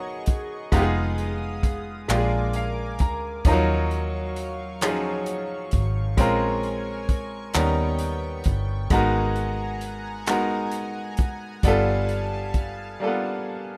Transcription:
Already playing: B1 F#3 B3 C#4 D#4 G#4 A#4 D#5 C#6
0.26 kick, closed hi-hat
0.72 F1 G#3 B3 D#4 F4 G4 F5 D#6, kick, closed hi-hat
0.82 G#4
1.18 closed hi-hat
1.63 kick, closed hi-hat
2.08 A#1 G#3 A#3 D4 F4 G4 A#4 G#5 D6, clap, closed hi-hat
2.18 G#4
2.53 F5, closed hi-hat
2.99 D2 A#5, kick, closed hi-hat
3.45 D#2 F3 F#3 C#4 D#4 F4 A#4 F5 C#6, kick, closed hi-hat
3.52 F#3
3.91 closed hi-hat
4.36 closed hi-hat
4.81 F3 C#4 D#4 F4 G#4, clap, closed hi-hat
4.88 F#3
5.26 closed hi-hat
5.71 G#1, kick, closed hi-hat
6.17 A#1 G#3 C4 C#4 F4 A#4 G#5, kick, closed hi-hat
6.63 closed hi-hat
7.09 kick, closed hi-hat
7.53 D#2 G3 B3 C#4 D#4 G5, clap, closed hi-hat
7.57 A#4
7.99 closed hi-hat
8.44 G1, kick, closed hi-hat
8.90 G#1 G#3 B3 D#4 F#4 A#4 F#5 G#5 A#5, kick, closed hi-hat
9.36 closed hi-hat
9.81 closed hi-hat
10.26 G#3 B3 D#4 F#4, clap, closed hi-hat
10.31 A#4
10.71 closed hi-hat
11.17 F1, kick, closed hi-hat
11.63 G1 G3 B3 D4 F4 F5 A5, kick, closed hi-hat
11.68 A4
12.09 closed hi-hat
12.54 kick, closed hi-hat
13.00 G3 A#3 D4 F4 A4
13.07 B3

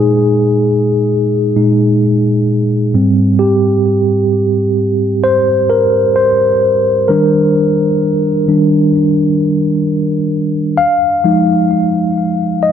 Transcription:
Already playing: A#2 G#3 D#4 G#4
1.56 A#2 G#3 D#4
2.94 G#2 G3 C4
3.39 G4
5.24 C5
5.70 A#4
6.16 C5
7.08 D#3 G3 D4 A#4
8.48 D#3 G3 D4
10.78 F5
11.24 F3 G#3 D#4
12.63 D#5

